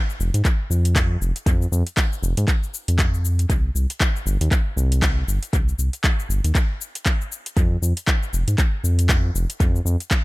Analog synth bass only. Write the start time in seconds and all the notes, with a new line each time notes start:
0.20 F1
0.34 G#2
0.70 F2
1.21 F1
1.46 F2
1.72 F2
2.22 F1
2.37 G#2
2.88 F2
3.50 C2
3.75 C2
4.26 G1
4.41 D#2
4.77 C2
5.27 G1
5.53 C2
5.78 C2
6.29 G1
6.44 D#2
7.57 F2
7.82 F2
8.33 F1
8.47 G#2
8.84 F2
9.35 F1
9.60 F2
9.85 F2